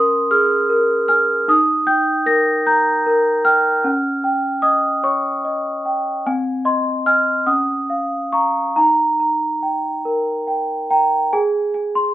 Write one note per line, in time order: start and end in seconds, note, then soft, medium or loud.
0.00 1.45 C#4 medium
0.00 0.54 A#4 medium
0.00 1.09 G#5 medium
0.00 1.51 C6 loud
0.00 0.30 D#6 medium
0.31 0.94 G#4 medium
0.31 1.07 F6 medium
0.69 1.33 A#4 medium
1.08 1.49 G#5 medium
1.08 1.48 F6 medium
1.48 3.81 D#4 medium
1.48 1.89 D#6 loud
1.87 2.51 G5 medium
1.87 2.27 G6 loud
2.26 2.90 A#4 medium
2.26 2.66 A#6 loud
2.67 3.30 A#5 medium
2.67 3.46 G6 medium
3.06 3.70 A#4 medium
3.45 3.85 G5 medium
3.45 4.64 F6 loud
3.84 6.21 C#4 medium
4.24 4.88 G5 medium
4.62 5.28 D#5 medium
4.62 5.03 D#6 medium
5.04 5.69 C#5 soft
5.04 5.45 C#6 medium
5.45 6.09 D#5 medium
5.85 6.25 G5 soft
6.26 7.45 C4 medium
6.26 6.66 G#5 medium
6.65 7.05 D#5 medium
6.65 7.06 C6 medium
7.06 7.44 D#5 soft
7.06 7.44 G#5 medium
7.06 7.48 F6 medium
7.46 8.71 C#4 medium
7.46 8.32 D#6 medium
7.90 8.32 F5 soft
8.32 8.72 F5 soft
8.32 8.72 A#5 soft
8.32 8.76 C#6 medium
8.76 11.30 D#4 medium
8.76 9.19 A#5 medium
9.20 9.88 A#5 soft
9.62 10.31 G5 soft
10.05 10.74 A#4 soft
10.47 10.89 G5 soft
10.90 11.33 G5 medium
10.90 11.33 A#5 soft
11.33 12.14 G#4 medium
11.33 11.73 G#5 medium
11.74 12.14 G#5 medium
11.95 12.14 C6 medium